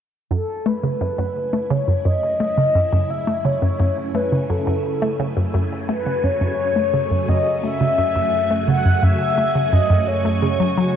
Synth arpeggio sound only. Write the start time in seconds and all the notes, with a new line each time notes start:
0.31 F#2
0.66 A3
0.83 C#3
1.01 F#2
1.18 F#2
1.53 A3
1.70 C#3
1.88 F#2
2.05 F#2
2.40 A3
2.58 C#3
2.75 F#2
2.93 F#2
3.28 A3
3.45 C#3
3.62 F#2
3.80 F#2
4.15 A3
4.32 C#3
4.50 F#2
4.67 F#2
5.02 A3
5.20 C#3
5.37 F#2
5.54 F#2
5.89 A3
6.07 C#3
6.24 F#2
6.41 F#2
6.76 A3
6.94 C#3
7.11 F#2
7.29 F#2
7.63 A3
7.81 C#3
7.98 F#2
8.16 F#2
8.51 A3
8.68 C#3
8.85 F#2
9.03 F#2
9.38 A3
9.55 C#3
9.73 F#2
9.90 F#2
10.25 A3
10.43 C#3
10.60 F#3
10.78 F#3